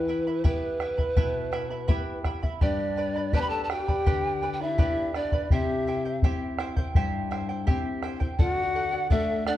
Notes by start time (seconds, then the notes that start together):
Already playing: E3 B4
0.08 E4 E5 G5 B5
0.27 E4 E5 B5
0.44 B3 E4 G4 B4 E5 G5 B5, bombo low
0.80 E4 E5 G5 B5, bombo rim
0.98 E4 E5 B5, bombo low
1.17 B2 E4 B4 E5 G5 B5, bombo low
1.52 E4 E5 G5 B5, bombo rim
1.70 E4 E5 B5
1.88 B3 E4 G4 B4 E5 G5 B5, bombo low
2.24 E4 E5 G5 B5, bombo rim, bombo low
2.43 E4 E5 B5, bombo low
2.61 G2 D4 G4 B4 D5 G5 B5, bombo low
2.97 B4 D5 G5 B5
3.16 B4 D5 B5
3.33 B3 D4 G4 B4 D5 G5 A5 B5, bombo low
3.40 B4 B5
3.49 A4 A5
3.64 A4 A5
3.70 G4 B4 D5 G5 B5, bombo rim
3.88 B4 D5 B5, bombo low
4.06 D3 G4 B4 D5 G5 B5, bombo low
4.42 B4 D5 G5 B5
4.53 G4 G5
4.60 E4 B4 D5 E5 B5
4.78 B3 D4 G4 B4 D5 G5 B5, bombo low
5.14 D4 B4 D5 G5 B5, bombo rim
5.32 B4 D5 B5, bombo low
5.50 C3 E4 G4 C5 E5 G5, bombo low
5.87 E4 C5 E5 G5
6.05 E4 C5 G5
6.22 C4 E4 G4 C5 E5 G5, bombo low
6.59 E4 C5 E5 G5, bombo rim
6.77 E4 C5 G5, bombo low
6.95 G2 E4 G4 C5 E5 G5, bombo low
7.31 E4 C5 E5 G5, bombo rim
7.49 E4 C5 G5
7.67 C4 E4 G4 C5 E5 G5, bombo low
8.03 E4 C5 E5 G5, bombo rim
8.20 E4 C5 G5, bombo low
8.39 D3 F4 A4 D5 F#5, bombo low
8.52 F#4
8.75 A4 D5 F#5
8.92 D5 F#5
9.10 A3 D4 F#4 A4 D5 E5 F#5, bombo low
9.46 D4 A4 D5 F#5, bombo rim